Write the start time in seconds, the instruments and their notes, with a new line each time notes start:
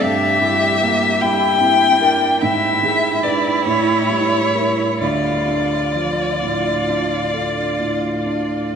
0.01 grand piano G2, cello G4, violin E5
0.41 grand piano E4
0.82 grand piano A#3
1.21 grand piano G3, cello E4, violin G5
1.61 cello C4, grand piano E4
2.01 cello D4, grand piano A#4
2.41 grand piano G#2, cello E4, violin E5
2.83 grand piano G#3
3.23 grand piano D4 B4, violin D5
3.65 grand piano A2, violin C#5
4.10 grand piano G3
4.55 grand piano E4 A#4
5.01 grand piano D2, cello F4, violin D5
5.48 grand piano D4
5.95 grand piano F3
6.42 grand piano A2
6.89 grand piano D4
7.34 grand piano A4
7.80 grand piano A2
8.26 grand piano D4